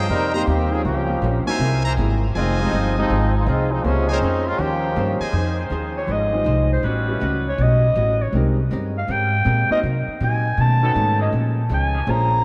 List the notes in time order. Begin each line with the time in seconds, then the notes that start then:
Already playing: F3 A#3 C#4 G#4 A#4 C5 D#5 G5
0.09 F2 C3 G3 A#3 C4 D#4 A#4
0.14 D#4
0.34 G3 A#3 C4 D#4 G4 A#4 C5 D#5 A#5
0.47 D#2 C3 D#3 G3 A#3 C4 D#4 G4
0.74 F3 A#3 C#4 G#4
0.85 C#2 G2 F3 A#3 C#4 G4
1.09 G3 A#3 C#4 F4 G4
1.22 A#1 G2 F3 A#3 C#4
1.45 A#3 C4 D#4 E4 F#4 A#4 C5 E5 G#5, muted upright bass stroke
1.59 C2 C3 A#3 E4
1.63 G#4
1.85 A#4 C5 E5 A#5
1.97 G#1 C3 A#3 E4 G#4
2.35 F1 D#3 F3 G#3 C4 D#4 G#4 C5 D#5 F5 G#5
2.60 F3 G#3 C4 D#4 F4 G4
2.71 G1 F3 C4 D#4 G#4
2.98 F3 G#3 C4 D#4 F4 G4
3.10 G#1 F3 C4 D#4 G#4
3.36 F3 G#3 C4 D#4
3.46 C2 F3 G#3 C4 D#4 F4 G#4
3.71 F3 G#3 C4 D#4
3.84 C#2 C3 F3 G#3 A#3 C#4 F4 G#4 C5
4.09 G#3 C4 C#4 D#4 A#4 C5 C#5 G#5
4.21 F2 A#3 C#4 G#4 C5
4.47 G#3 C4 C#4 F4
4.58 D#2 D#3 F3 A#3 C#4 G4
4.62 C5
4.96 G2 D#3 A#3 C#4 F4 G4 C5
5.20 G#4 C5 D#5 G#5, muted upright bass stroke
5.33 F2 F3 G#3 D#4 F4 G#4 C5
5.37 C5
5.70 D#2 F3 D#4 G#4 C5
5.97 C#5
6.07 G#1 F3 D#4 G#4 C5
6.12 D#5
6.33 G#3 D#4 F4 G4 C5
6.44 C2 F3 D#4 G#4 C5
6.73 C5
6.83 A1 A2 G3 C#4 F#4 B4
7.08 G3 C#4 E4 F#4 B4
7.20 C#2 A2 G3 C#4 F#4
7.49 C#5
7.58 B1 A2 G3 C#4 F#4 D#5
7.95 A1 A2 G3 C#4 F#4
8.22 C#5
8.32 C2 G#3 C4 D#4 G4 A#4
8.71 G2 G#3 C4 G4 A#4
8.98 F5
9.08 G#2 G#3 C4 G4 A#4 G5
9.45 A#2 G#3 C4 G4 A#4
9.70 F#3 A#3 C4 D#4 F#4 A#4 C5 D#5, muted upright bass stroke
9.83 C3 F#3 A#3 D#4
10.08 muted upright bass stroke
10.20 A#2 C3 F#3 A#3 D#4 G#5
10.58 B2 D#3 A3 C#4 A5
10.82 D#3 B3 C#4 D#4 F#4 A4 B4
10.94 G#2 B2 D#3 A3 C#4
11.19 F3 A#3 C#4 G#4 D#5
11.31 A#2 F3 G#3 C#4
11.69 C#2 A#2 F3 G#3 C#4
11.74 G#5
11.93 F3 A#3 C#4 G#4
12.06 A#1 A#2 F3 G#3 A#3 C#4 F4 G#4 C5 A#5